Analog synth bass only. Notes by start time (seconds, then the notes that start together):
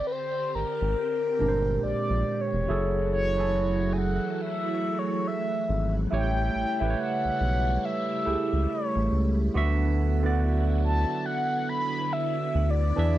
0.55 G#1
0.82 G#1
1.41 G1
1.84 A#1
2.10 A#1
2.53 E1
2.69 F#1
5.69 G#1
6.12 A1
6.55 A1
6.81 A1
7.25 B1
7.41 B1
8.27 C#2
8.53 C#2
8.96 A1
9.12 C#2
9.55 D2
12.55 D2
12.98 E2